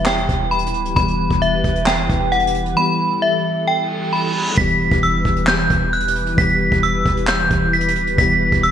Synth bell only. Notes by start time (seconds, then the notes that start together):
0.06 G5
0.51 B5
0.96 B5
1.42 E5
1.87 G5
2.32 F#5
2.77 B5
3.22 E5
3.67 G5
4.13 B5
4.57 B6
5.03 E6
5.48 G6
5.93 F#6
6.38 B6
6.83 E6
7.28 G6
7.73 B6
8.18 B6
8.63 E6